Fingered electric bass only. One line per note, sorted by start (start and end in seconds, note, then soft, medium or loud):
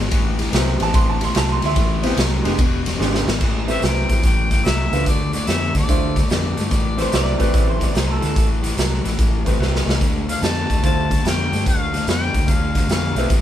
0.00 0.11 G#1 medium
0.11 0.46 A1 loud
0.53 0.76 C2 loud
0.81 0.92 A1 loud
0.94 1.29 A1 loud
1.35 1.58 C2 loud
1.62 1.74 D2 loud
1.76 2.11 A1 loud
2.17 2.40 C2 loud
2.45 2.57 F1 medium
2.59 2.94 E1 loud
3.00 3.23 G#1 loud
3.27 3.41 G#1 loud
3.41 3.76 A1 medium
3.82 4.05 C2 medium
4.09 4.21 A1 medium
4.24 4.58 A1 medium
4.65 4.88 C2 medium
4.92 5.04 C#2 medium
5.06 5.41 D2 medium
5.48 5.71 F2 medium
5.75 5.87 D2 medium
5.88 6.23 D2 medium
6.31 6.54 F2 medium
6.58 6.69 G2 medium
6.71 7.06 A1 medium
7.13 7.36 C2 medium
7.40 7.52 A1 medium
7.54 7.88 A1 medium
7.96 8.18 C2 medium
8.23 8.34 D2 medium
8.36 8.71 A1 medium
8.77 9.00 C2 medium
9.04 9.16 A1 medium
9.19 9.53 A1 medium
9.59 9.82 C2 medium
9.86 9.98 C2 medium
10.01 10.36 D2 medium
10.42 10.65 F2 medium
10.70 10.81 D2 medium
10.84 11.18 D2 medium
11.25 11.48 F2 medium
11.52 11.64 G2 medium
11.66 12.01 D2 medium
12.07 12.30 F2 medium
12.34 12.46 D2 medium
12.48 12.83 D2 medium
12.88 13.11 F2 medium
13.15 13.28 B1 medium
13.30 13.41 A1 medium